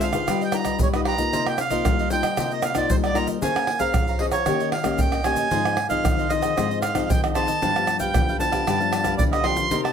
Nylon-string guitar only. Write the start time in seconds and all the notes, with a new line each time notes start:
Already playing: D3 G#3 C4 F4
0.14 D#4 F4 B4
0.29 G3
0.53 D#4 F4 B4
0.81 G3
0.94 D#4 F4 B4
1.18 A#3 D#4 F4
1.33 C3
1.71 A#3 D#4 F4
1.85 G3
2.10 A#3 D#4 F4
2.37 C3 A#3 D#4 F4
2.74 A#3 D#4 F4
2.89 G3
3.14 A#3 D#4 F4
3.41 A#3 C#4 G#4 C5
3.80 C#4 G#4 C5
3.95 F3
4.20 C#4 G#4 C5
4.47 D#3 A#3 C#4 G4
4.83 A#3 C#4 G4
4.99 A#2
5.25 A#3 C#4 G4
5.51 G#2 F3 C4 D#4
5.89 F3 C4 D#4
6.03 D#3
6.29 F3 C4 D#4
6.56 G#2 F3 C4 D#4
6.94 F3 C4 D#4
7.09 D#3
7.35 F3 C4 D#4
7.62 G2 F3 B3 D4
7.76 F3 B3 D4
8.14 D3 F3 B3 D4
8.39 F3 B3 D4
8.66 G2
8.80 F3 B3 D4
9.19 D3 F3 B3 D4
9.43 F3 B3 D4
9.70 C3 A#3 D#4 G4